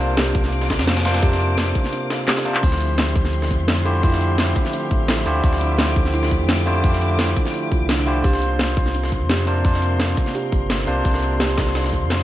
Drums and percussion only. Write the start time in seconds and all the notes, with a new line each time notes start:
0.17 snare, closed hi-hat
0.26 shaker
0.35 kick, closed hi-hat, open hi-hat, shaker
0.44 snare, closed hi-hat
0.52 closed hi-hat
0.62 snare
0.70 kick, snare, closed hi-hat, shaker
0.79 snare, closed hi-hat
0.87 snare, closed hi-hat
0.97 snare, closed hi-hat
1.05 snare, closed hi-hat, open hi-hat, shaker
1.14 snare, closed hi-hat
1.23 kick, closed hi-hat
1.32 snare, closed hi-hat, shaker
1.40 closed hi-hat, shaker
1.58 snare, closed hi-hat
1.67 closed hi-hat, shaker
1.75 kick, closed hi-hat, open hi-hat, shaker
1.84 snare
1.93 closed hi-hat
2.02 shaker
2.10 snare, closed hi-hat, shaker
2.19 closed hi-hat
2.28 snare, clap, closed hi-hat
2.37 snare, closed hi-hat, shaker
2.45 open hi-hat, shaker
2.55 clap, closed hi-hat
2.63 kick, closed hi-hat, crash
2.72 snare, closed hi-hat
2.80 closed hi-hat, shaker
2.98 snare, closed hi-hat
3.07 shaker
3.15 kick, closed hi-hat, shaker
3.25 snare, closed hi-hat
3.33 closed hi-hat
3.42 snare
3.51 kick, closed hi-hat, shaker
3.68 snare, closed hi-hat
3.77 closed hi-hat
3.86 closed hi-hat, shaker
3.95 closed hi-hat
4.03 kick, closed hi-hat
4.12 snare, closed hi-hat, shaker
4.21 closed hi-hat, shaker
4.38 snare, closed hi-hat
4.47 shaker
4.56 kick, closed hi-hat, open hi-hat, shaker
4.65 snare
4.73 closed hi-hat
4.91 kick, closed hi-hat, shaker
5.08 snare, closed hi-hat
5.17 snare, shaker
5.26 closed hi-hat, shaker
5.44 kick, closed hi-hat
5.53 snare, closed hi-hat
5.61 closed hi-hat, shaker
5.79 snare, closed hi-hat
5.88 shaker
5.96 kick, closed hi-hat, shaker
6.05 snare, closed hi-hat
6.14 closed hi-hat
6.23 snare
6.31 kick, closed hi-hat, shaker
6.49 snare, closed hi-hat
6.58 closed hi-hat
6.66 closed hi-hat, shaker
6.76 closed hi-hat
6.84 kick, closed hi-hat
6.93 snare, closed hi-hat, shaker
7.01 closed hi-hat, shaker
7.19 snare, closed hi-hat
7.28 shaker
7.36 kick, closed hi-hat, open hi-hat, shaker
7.46 snare
7.54 closed hi-hat
7.72 kick, closed hi-hat, shaker
7.89 snare, closed hi-hat
7.98 snare, shaker
8.07 closed hi-hat, shaker
8.24 kick, closed hi-hat
8.33 snare, closed hi-hat
8.42 closed hi-hat, shaker
8.59 snare, closed hi-hat
8.68 shaker
8.77 kick, closed hi-hat, shaker
8.86 snare, closed hi-hat
8.94 closed hi-hat
9.04 snare
9.12 kick, closed hi-hat, shaker
9.29 snare, closed hi-hat
9.39 closed hi-hat
9.47 closed hi-hat, shaker
9.56 closed hi-hat
9.65 kick, closed hi-hat
9.74 snare, closed hi-hat, shaker
9.82 closed hi-hat, shaker
10.00 snare, closed hi-hat
10.09 shaker
10.17 kick, closed hi-hat, open hi-hat, shaker
10.26 snare
10.35 closed hi-hat
10.52 kick, closed hi-hat, shaker
10.70 snare, closed hi-hat
10.79 snare, shaker
10.87 closed hi-hat, shaker
11.05 kick, closed hi-hat
11.14 snare, closed hi-hat
11.22 closed hi-hat, shaker
11.40 snare, closed hi-hat
11.49 shaker
11.58 kick, snare, closed hi-hat, shaker
11.67 snare, closed hi-hat
11.75 snare, closed hi-hat
11.84 snare
11.93 kick, closed hi-hat, shaker
12.10 snare, closed hi-hat
12.19 closed hi-hat